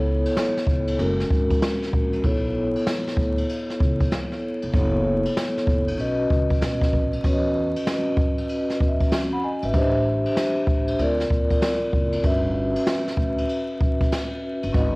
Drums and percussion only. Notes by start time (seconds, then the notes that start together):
0.26 ride
0.37 snare, hi-hat pedal, ride
0.57 snare
0.67 kick
0.87 ride
0.99 ride
1.20 snare
1.30 kick
1.50 kick, ride
1.62 snare, hi-hat pedal, ride
1.82 snare
1.93 kick
2.13 ride
2.24 kick, ride
2.76 ride
2.87 snare, hi-hat pedal, ride
3.07 snare
3.17 kick
3.38 ride
3.49 ride
3.70 snare
3.80 kick
4.00 kick, ride
4.11 snare, hi-hat pedal, ride
4.32 snare
4.62 ride
4.73 kick, ride
5.25 ride
5.37 snare, hi-hat pedal, ride
5.57 snare
5.67 kick
5.88 ride
5.99 ride
6.30 kick
6.50 kick, ride
6.62 snare, hi-hat pedal, ride
6.82 kick, snare
6.93 kick
7.13 ride
7.24 kick, ride
7.76 ride
7.87 snare, hi-hat pedal, ride
8.17 kick
8.38 ride
8.49 ride
8.70 snare
8.80 kick
9.00 kick, ride
9.11 snare, hi-hat pedal, ride
9.63 ride
9.74 kick, ride
10.26 ride
10.37 snare, hi-hat pedal, ride
10.67 kick
10.88 ride
10.99 ride
11.20 snare
11.30 kick
11.51 kick, ride
11.62 snare, hi-hat pedal, ride
11.93 kick
12.13 ride
12.24 kick, ride
12.76 ride
12.87 snare, hi-hat pedal, ride
13.08 snare
13.17 kick
13.38 ride
13.49 ride
13.81 kick
14.01 kick, ride
14.12 snare, hi-hat pedal, ride
14.63 ride
14.74 kick, ride